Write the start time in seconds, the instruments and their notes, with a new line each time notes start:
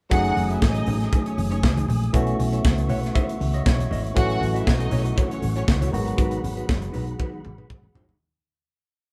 0.10 fingered electric bass F#1, tine electric piano F#3 A3 C#4 D#4 G#4, clean electric guitar A3 D#4 G#4, tonewheel organ A3 G#5 D#6, string section F#4 F#5, kick, closed hi-hat
0.24 closed hi-hat
0.36 fingered electric bass F#1, muted clean electric guitar stroke, open hi-hat, high conga
0.49 clean electric guitar A3 D#4 A4, string section E4 E5, closed hi-hat
0.61 fingered electric bass A1, string section D#4 D#5, kick, snare
0.75 muted clean electric guitar stroke, closed hi-hat
0.86 fingered electric bass A1, clean electric guitar A3 D#4 G#4, open hi-hat, low conga
1.00 muted clean electric guitar stroke, snare, closed hi-hat
1.11 clean electric guitar A3 D#4 G#4, kick, closed hi-hat
1.25 string section C#4 C#5, muted clean electric guitar stroke, closed hi-hat
1.37 fingered electric bass F#1, muted clean electric guitar stroke, open hi-hat, muted conga, high conga
1.50 clean electric guitar A3 D#4 G#4, string section C#4 C#5, closed hi-hat
1.62 fingered electric bass C#2, muted clean electric guitar stroke, kick, snare
1.76 clean electric guitar A3 D#4 G#4, closed hi-hat, high conga
1.88 fingered electric bass A#1, open hi-hat, high conga, low conga
2.01 muted clean electric guitar stroke, closed hi-hat
2.13 fingered electric bass B1, tine electric piano E3 A3 B3 C#4 F#4, clean electric guitar E4 A4 C#5, tonewheel organ E5 C#6, kick, closed hi-hat
2.27 closed hi-hat
2.39 fingered electric bass B1, muted clean electric guitar stroke, open hi-hat, high conga
2.52 clean electric guitar E4 A4 C#5, closed hi-hat
2.64 fingered electric bass C#2, muted clean electric guitar stroke, kick, snare, muted conga
2.78 muted clean electric guitar stroke, closed hi-hat
2.89 fingered electric bass B1, clean electric guitar E4 A4 C#5, tine electric piano F#5, open hi-hat, low conga
3.02 muted clean electric guitar stroke, snare, closed hi-hat
3.15 clean electric guitar E4 A4 C#5, tine electric piano E5, kick, closed hi-hat
3.28 muted clean electric guitar stroke, closed hi-hat
3.39 fingered electric bass C#2, muted clean electric guitar stroke, open hi-hat, high conga
3.54 clean electric guitar E4 A4 C#5, tine electric piano D#5, closed hi-hat
3.65 fingered electric bass B1, tine electric piano C#5, muted clean electric guitar stroke, kick, snare
3.78 muted clean electric guitar stroke, closed hi-hat, high conga
3.90 fingered electric bass G#1, clean electric guitar E4 A4 D#5, open hi-hat, muted conga, high conga, low conga
4.04 muted clean electric guitar stroke, closed hi-hat
4.14 fingered electric bass A1, tine electric piano E3 F#3 A3 C#4 F#4, clean electric guitar E4 F#4 C#5, string section F#4 F#5, tonewheel organ A4 F#5 C#6, kick, closed hi-hat
4.30 closed hi-hat
4.41 fingered electric bass A1, muted clean electric guitar stroke, open hi-hat, muted conga, high conga
4.53 string section E4 E5, clean electric guitar E4 F#4 D#5, closed hi-hat
4.66 fingered electric bass B1, string section D#4 D#5, muted clean electric guitar stroke, kick, snare
4.79 muted clean electric guitar stroke, closed hi-hat
4.91 fingered electric bass B1, clean electric guitar E4 F#4 C#5, open hi-hat, muted conga, low conga
5.04 muted clean electric guitar stroke, closed hi-hat
5.16 clean electric guitar E4 F#4 C#5, kick, closed hi-hat, muted conga
5.30 string section C#4 C#5, muted clean electric guitar stroke, closed hi-hat
5.41 fingered electric bass A1, muted clean electric guitar stroke, open hi-hat, muted conga, high conga
5.56 string section C#4 C#5, clean electric guitar E4 F#4 C#5, closed hi-hat
5.68 fingered electric bass C#2, muted clean electric guitar stroke, kick, snare
5.81 clean electric guitar E4 F#4 C#5, closed hi-hat, high conga
5.91 fingered electric bass G#1, tine electric piano D#3 F#3 G#3 B3 F#4, tonewheel organ G#4 B5, muted clean electric guitar stroke, open hi-hat, high conga, low conga
6.06 muted clean electric guitar stroke, closed hi-hat
6.17 fingered electric bass G#1, clean electric guitar D#4 F#4 B4, kick, closed hi-hat, muted conga
6.31 closed hi-hat
6.43 fingered electric bass G#1, muted clean electric guitar stroke, open hi-hat, high conga
6.57 clean electric guitar D#4 F#4 B4, closed hi-hat
6.69 fingered electric bass F#1, kick, snare, muted conga
6.82 muted clean electric guitar stroke, closed hi-hat
6.92 fingered electric bass B1, clean electric guitar D#4 F#4 B4, open hi-hat, muted conga, low conga
7.07 muted clean electric guitar stroke, closed hi-hat
7.19 clean electric guitar D#4 F#4 B4, kick, high tom, muted conga
7.32 muted clean electric guitar stroke
7.45 fingered electric bass G#1, mid tom, high conga
7.58 clean electric guitar D#4 F#4 B4, mid tom
7.69 fingered electric bass G#1, muted clean electric guitar stroke, kick, mid tom, muted conga
7.83 muted clean electric guitar stroke, high conga
7.94 fingered electric bass G1, clean electric guitar D#4 F#4 C#5, floor tom, high conga, low conga
8.08 muted clean electric guitar stroke, floor tom